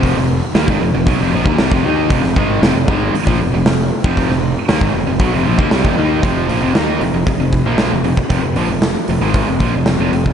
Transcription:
<<
  \new Staff \with { instrumentName = "Distorted electric guitar" } { \clef bass \time 4/4 \key f \minor \tempo 4 = 116 <f, c f>16 <f, c>8 r16 <ees bes>16 <aes, ees>16 <f, c>16 <f, c>16 <b, ges>16 <f, c>16 <bes, f>16 <ees bes>16 <c g>16 <f, c>16 <ees bes ees'>8 | <f, c>16 <f, c>16 <aes, ees aes>8 <f, c>16 <f, c>16 <aes, ees aes>8 r16 <bes, f>16 <f, c>16 <f, c>16 <f, c>8 r16 <f, c f>16~ | <f, c f>16 <f, c>8 r16 <ees bes>16 <aes, ees>16 <f, c>16 <f, c>16 <b, ges>16 <f, c>16 <bes, f>16 <ees bes>16 <c g>16 <f, c>16 <ees bes ees'>8 | <f, c f>8 <bes, f>16 <f, c>16 <ees bes ees'>8 <f, c>16 <f, c>16 <f, c>16 <f, c>8 <bes, f bes>8 <f, c>16 <f, c>16 r16 |
<f, c>16 <f, c>16 <bes, f>16 <f, c>8 r16 <f, c>16 <aes, ees aes>8 <f, c>16 <bes, f>16 <f, c>16 <f, c>16 <f, c>16 <f, c>8 | }
  \new Staff \with { instrumentName = "Overdriven electric guitar" } { \clef bass \time 4/4 \key f \minor <f, c f>16 <f, c>8 r16 <ees bes>16 <aes, ees>16 <f, c>16 <f, c>16 <b, ges>16 <f, c>16 <bes, f>16 <ees bes>16 <c g>16 <f, c>16 <ees bes ees'>8 | <f, c>16 <f, c>16 <aes, ees aes>8 <f, c>16 <f, c>16 <aes, ees aes>8 r16 <bes, f>16 <f, c>16 <f, c>16 <f, c>8 r16 <f, c f>16~ | <f, c f>16 <f, c>8 r16 <ees bes>16 <aes, ees>16 <f, c>16 <f, c>16 <b, ges>16 <f, c>16 <bes, f>16 <ees bes>16 <c g>16 <f, c>16 <ees bes ees'>8 | <f, c f>8 <bes, f>16 <f, c>16 <ees bes ees'>8 <f, c>16 <f, c>16 <f, c>16 <f, c>8 <bes, f bes>8 <f, c>16 <f, c>16 r16 |
<f, c>16 <f, c>16 <bes, f>16 <f, c>8 r16 <f, c>16 <aes, ees aes>8 <f, c>16 <bes, f>16 <f, c>16 <f, c>16 <f, c>16 <f, c>8 | }
  \new Staff \with { instrumentName = "Fingered electric bass" } { \clef bass \time 4/4 \key f \minor f,,16 f,,8 r16 ees,16 aes,,16 f,,16 f,,16 b,,16 f,,16 bes,,16 ees,16 c,16 f,,16 ees,8 | f,,16 f,,16 aes,,8 f,,16 f,,16 aes,,8 r16 bes,,16 f,,16 f,,16 f,,8 r16 f,,16~ | f,,16 f,,8 r16 ees,16 aes,,16 f,,16 f,,16 b,,16 f,,16 bes,,16 ees,16 c,16 f,,16 ees,8 | f,,8 bes,,16 f,,16 ees,8 f,,16 f,,16 r16 f,,8 bes,,8 f,,16 f,,16 r16 |
f,,16 f,,16 bes,,16 f,,8 r16 f,,16 aes,,8 f,,16 bes,,16 f,,16 f,,16 f,,16 f,,8 | }
  \new DrumStaff \with { instrumentName = "Drums" } \drummode { \time 4/4 <hho bd>16 sn8. <hho sn>16 bd8. <hho bd>8. bd16 <hho sn>16 bd8. | <hho bd>16 sn16 bd8 <hho sn>8 bd8 hho16 bd8. <hho sn>8. bd16 | <hho bd>16 sn8. <hho sn>16 bd8. <hho bd>8. bd16 <hho sn>16 bd8. | <hho bd>8 hho8 <hho sn>8 hho8 <hho bd>8 <hho bd>8 <hho sn>8 hho16 bd16 |
<hho bd>8 hho8 <hho sn>8 hho8 <hho bd>8 <hho bd>8 <hho sn>8 hho16 bd16 | }
>>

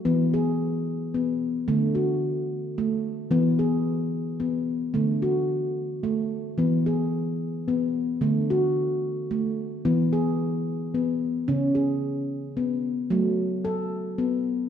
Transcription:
\new Staff \with { instrumentName = "Handpan" } { \time 3/4 \key e \mixolydian \tempo 4 = 110 << { b8 gis'4 r8 b4 | a8 fis'4 r8 a4 | b8 gis'4 r8 b4 | a8 fis'4 r8 a4 |
b8 gis'4 r8 b4 | a8 fis'4 r8 a4 | b8 gis'4 r8 b4 | cis'8 gis'4 r8 b4 |
a4 a'4 b4 | } \\ { e2. | d2. | e2. | d2. |
e2. | d2. | e2. | cis2. |
fis2. | } >> }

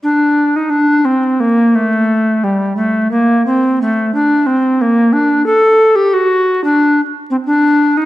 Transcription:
\new Staff \with { instrumentName = "Recorder" } { \time 4/4 \key d \phrygian \tempo 4 = 89 d'8. ees'16 d'8 c'8 bes8 a4 g8 | a8 bes8 c'8 a8 d'8 c'8 bes8 d'8 | a'8. g'16 fis'8. d'4 c'16 d'8. ees'16 | }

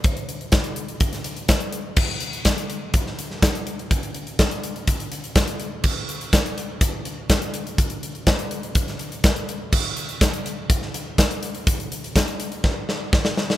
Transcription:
\new DrumStaff \with { instrumentName = "Drums" } \drummode { \time 4/4 \tempo 4 = 124 <hh bd>16 hh16 hh16 hh16 <hh bd sn>16 hh16 hh16 hh16 <hh bd>16 <hh sn>16 hh16 hh16 <hh bd sn>16 hh16 hh8 | <cymc bd>8 hh16 hh16 <hh bd sn>16 hh16 hh8 <hh bd>16 sn16 hh16 sn16 <hh bd sn>16 hh16 hh16 hh16 | <hh bd>16 hh16 hh16 hh16 <hh bd sn>16 hh16 hh16 hh16 <hh bd>16 hh16 hh16 hh16 <hh bd sn>16 hh16 hh8 | <cymc bd>8 hh16 hh16 <hh bd sn>16 hh16 hh8 <hh bd>8 hh8 <hh bd sn>16 hh16 hh16 hh16 |
<hh bd>16 hh16 hh16 hh16 <hh bd sn>16 hh16 hh16 hh16 <hh bd>16 <hh sn>16 hh16 hh16 <hh bd sn>16 hh16 hh8 | <cymc bd>8 hh16 hh16 <hh bd sn>16 hh16 hh8 <hh bd>16 sn16 hh8 <hh bd sn>16 hh16 hh16 hh16 | <hh bd>16 hh16 hh16 hh16 <hh bd sn>16 hh16 hh16 hh16 <bd sn>8 sn8 <bd sn>16 sn16 sn16 sn16 | }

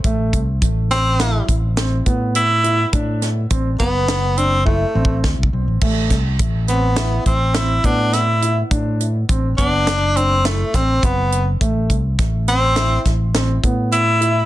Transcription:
<<
  \new Staff \with { instrumentName = "Grand piano" } { \time 5/4 \key a \dorian \tempo 4 = 104 a4 r8 c'8 e'4 c'8 b4 e'8 | d'4 c'8 b4 d'8 e'8 c'4 r8 | a4 r8 c'8 e'4 c'8 b4 e'8 | d'4 c'8 b4 d'8 e'8 c'4 r8 |
a4 r8 c'8 e'4 c'8 b4 e'8 | }
  \new Staff \with { instrumentName = "Tenor saxophone" } { \time 5/4 \key a \dorian r4. c'4 r4. e'4 | r4. b4 c'8 a4 r4 | r4. b4 c'8 e'8 d'8 e'8. r16 | r4. d'4 c'8 a8 c'8 b8. r16 |
r4. c'4 r4. e'4 | }
  \new Staff \with { instrumentName = "Fretless electric bass" } { \clef bass \time 5/4 \key a \dorian a,,8 c,8 a,,4. a,,4 a,4. | a,4 a,,8 fis,,2 a,,8 d,16 c,16 b,,16 a,,16 | a,,8 c,8 r4. a,,4 a,4. | a,4 a,,8 fis,,2 a,,8 fis,,4 |
a,,8 c,8 a,,4. a,,4 a,4. | }
  \new DrumStaff \with { instrumentName = "Drums" } \drummode { \time 5/4 <hh bd>8 <hh bd>8 <hh bd>8 <hh sn>8 <hh sn>8 <hh bd>8 <hh sn>8 <hh bd>8 hh8 hh8 | <hh bd>8 <hh sn>8 <hh bd>8 <hh bd>8 <hh sn>8 hh8 \tuplet 3/2 { bd8 r8 bd8 <bd sn>8 bd8 r8 } | <cymc bd>8 <hh bd sn>8 <hh bd>8 hh8 <hh sn>8 <hh bd>8 <hh sn>8 <hh bd>8 <hh sn>8 hh8 | <hh bd>8 hh8 <hh bd>8 <hh bd>8 <hh sn>8 hh8 <hh sn>8 <hh bd sn>8 <hh bd>8 hh8 |
<hh bd>8 <hh bd>8 <hh bd sn>8 hh8 <hh sn>8 <hh bd sn>8 <hh sn>8 <hh bd>8 hh8 hh8 | }
>>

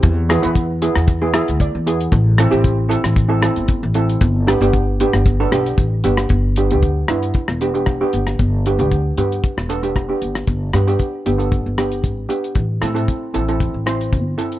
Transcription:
<<
  \new Staff \with { instrumentName = "Steel pan" } { \time 4/4 \key g \mixolydian \tempo 4 = 115 << { r2 r8 e''8 d''4 | r1 | r1 | r1 |
r1 | r1 | r1 | } \\ { r8 <b e' gis'>16 <b e' b'>8 r16 <b e' gis'>8 r16 <b e' gis'>16 <b e' gis'>8 r8 <b e' gis'>8 | r8 <c' e' a'>16 <c' e' g'>8 r16 <c' e' a'>8 r16 <c' e' a'>16 <c' e' a'>8 r8 <c' e' a'>8 | r8 <b d' g'>16 <b d' g'>8 r16 <b d' g'>8 r16 <b d' a'>16 <b d' g'>8 r8 <b d' g'>8 | r8 <b d' g'>16 <b d' g'>8 r16 <b d' e'>8 r8 <b d' g'>16 <b d' g'>16 r16 <b d' g'>8. |
r8 <b d' g'>16 <b d' g'>8 r16 <b d' g'>8 r8 <b d' a'>16 <b d' g'>16 r16 <b d' g'>8. | r8 <b d' g'>16 <b d' g'>8 r16 <b d' g'>16 <b d' a'>8 r16 <b d' g'>8 r8 <b d' g'>8 | r8 <c' e' a'>16 <c' e' a'>8 r16 <c' e' a'>16 <c' e' a'>8 r16 <c' e' c''>8 r8 <c' e' a'>8 | } >> }
  \new Staff \with { instrumentName = "Upright bass" } { \clef bass \time 4/4 \key g \mixolydian e,8. e,4 e,4 d,8 e,8. | a,,8. a,,4 a,,4 g,,8 a,,8. | g,,8. g,,4 g,,8. b,,8 a,,8 g,,8 | g,,8. d,8. g,8 r16 e,,4~ e,,16 g,,8 |
g,,8. d,8. g,8 r16 e,,4~ e,,16 g,,8 | g,,8 g,8 r8 g,,8. g,,8. aes,,8 r8 | a,,8 a,8 r8 a,,8. a,,8. g,,8 r8 | }
  \new DrumStaff \with { instrumentName = "Drums" } \drummode { \time 4/4 <hh bd>8 <hh ss>16 hh16 <hh bd>8 hh16 <hh ss>16 <hh bd>8 <hh ss>16 hh16 <hh bd>8 hh16 hh16 | <hh bd>8 <hh ss>16 hh16 <hh bd>8 hh16 <hh ss>16 <hh bd>8 <hh ss>16 hh16 <hh bd>8 hh16 hh16 | <hh bd>8 <hh ss>16 hh16 <hh bd>8 hh16 <hh ss>16 <hh bd>8 <hh ss>16 hh16 <hh bd>8 hh16 <hh ss>16 | <hh bd>8 hh16 hh16 <hh bd>8 <hh ss>16 hh16 <hh bd>16 ss16 hh16 hh16 <hh bd ss>8 hh16 <hh ss>16 |
<hh bd>8 hh16 hh16 <hh bd>8 hh16 hh16 <hh bd>16 ss16 hh16 hh16 <hh bd ss>8 hh16 <hh ss>16 | <hh bd>8 <hh ss>16 hh16 <hh bd>8 hh16 hh16 <hh bd>8 <hh ss>16 hh16 <hh bd>8 hh16 hh16 | <hh bd>8 <hh ss>16 hh16 <hh bd>8 hh16 hh16 <hh bd>8 <hh ss>16 hh16 <hh bd>8 hh16 hh16 | }
>>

